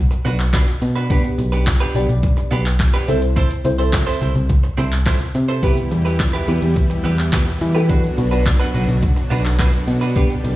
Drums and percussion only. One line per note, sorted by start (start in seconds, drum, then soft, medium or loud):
0.12 closed hi-hat medium
0.12 shaker medium
0.25 open hi-hat medium
0.25 shaker medium
0.39 clap medium
0.39 closed hi-hat medium
0.39 shaker medium
0.53 kick loud
0.53 snare medium
0.53 clap loud
0.53 closed hi-hat medium
0.53 shaker medium
0.68 closed hi-hat medium
0.68 shaker medium
0.82 open hi-hat medium
0.82 shaker medium
0.96 closed hi-hat medium
0.96 shaker medium
1.10 kick loud
1.10 closed hi-hat medium
1.10 shaker medium
1.24 closed hi-hat medium
1.24 shaker medium
1.39 open hi-hat medium
1.39 shaker medium
1.53 closed hi-hat medium
1.53 shaker medium
1.67 kick loud
1.67 snare loud
1.67 clap loud
1.67 closed hi-hat medium
1.67 shaker medium
1.81 closed hi-hat medium
1.81 shaker medium
1.95 open hi-hat medium
1.95 shaker medium
2.09 closed hi-hat medium
2.09 shaker medium
2.23 kick loud
2.23 closed hi-hat medium
2.23 shaker medium
2.38 closed hi-hat medium
2.38 shaker medium
2.52 open hi-hat medium
2.52 shaker medium
2.66 clap medium
2.66 closed hi-hat medium
2.66 shaker medium
2.80 kick loud
2.80 snare medium
2.80 clap loud
2.80 closed hi-hat medium
2.80 shaker medium
2.94 closed hi-hat medium
2.94 shaker medium
3.08 open hi-hat medium
3.08 shaker medium
3.22 closed hi-hat medium
3.22 shaker medium
3.36 kick loud
3.36 closed hi-hat medium
3.36 shaker medium
3.51 closed hi-hat medium
3.51 shaker medium
3.65 open hi-hat medium
3.65 shaker medium
3.79 closed hi-hat medium
3.79 shaker medium
3.93 kick loud
3.93 snare medium
3.93 clap loud
3.93 closed hi-hat medium
3.93 shaker medium
4.07 closed hi-hat medium
4.07 shaker medium
4.21 open hi-hat medium
4.21 shaker medium
4.35 closed hi-hat medium
4.35 shaker medium
4.49 kick loud
4.49 closed hi-hat medium
4.49 shaker medium
4.64 closed hi-hat medium
4.64 shaker medium
4.78 open hi-hat medium
4.78 shaker medium
4.92 clap medium
4.92 closed hi-hat medium
4.92 shaker medium
5.06 kick loud
5.06 snare medium
5.06 clap loud
5.06 closed hi-hat medium
5.06 shaker medium
5.21 closed hi-hat medium
5.21 shaker medium
5.35 open hi-hat medium
5.35 shaker medium
5.49 closed hi-hat medium
5.49 shaker medium
5.63 kick loud
5.63 closed hi-hat medium
5.63 shaker medium
5.77 closed hi-hat medium
5.77 shaker medium
5.91 open hi-hat medium
5.91 shaker medium
6.06 closed hi-hat medium
6.06 shaker medium
6.20 kick loud
6.20 snare loud
6.20 clap loud
6.20 closed hi-hat medium
6.20 shaker medium
6.34 closed hi-hat medium
6.34 shaker medium
6.48 open hi-hat medium
6.48 shaker medium
6.62 closed hi-hat medium
6.62 shaker medium
6.76 kick loud
6.76 closed hi-hat medium
6.76 shaker medium
6.91 closed hi-hat medium
6.91 shaker medium
7.05 open hi-hat medium
7.05 shaker medium
7.19 clap medium
7.19 closed hi-hat medium
7.19 shaker medium
7.33 kick loud
7.33 snare medium
7.33 clap loud
7.33 closed hi-hat medium
7.33 shaker medium
7.47 closed hi-hat medium
7.47 shaker medium
7.61 open hi-hat medium
7.61 shaker medium
7.75 closed hi-hat medium
7.75 shaker medium
7.90 kick loud
7.90 closed hi-hat medium
7.90 shaker medium
8.04 closed hi-hat medium
8.04 shaker medium
8.18 open hi-hat medium
8.18 shaker medium
8.32 closed hi-hat medium
8.32 shaker medium
8.46 kick loud
8.46 snare medium
8.46 clap loud
8.46 closed hi-hat medium
8.46 shaker medium
8.60 closed hi-hat medium
8.60 shaker medium
8.75 open hi-hat medium
8.75 shaker medium
8.89 closed hi-hat soft
8.89 shaker medium
9.03 kick loud
9.03 closed hi-hat medium
9.03 shaker medium
9.17 closed hi-hat medium
9.17 shaker medium
9.31 open hi-hat medium
9.31 shaker medium
9.45 clap medium
9.45 closed hi-hat medium
9.45 shaker medium
9.59 kick loud
9.59 snare medium
9.59 clap loud
9.59 closed hi-hat medium
9.59 shaker medium
9.74 closed hi-hat medium
9.74 shaker medium
9.88 open hi-hat medium
9.88 shaker medium
10.02 closed hi-hat medium
10.02 shaker medium
10.16 kick loud
10.16 closed hi-hat medium
10.16 shaker medium
10.30 closed hi-hat medium
10.30 shaker medium
10.45 open hi-hat medium
10.45 shaker medium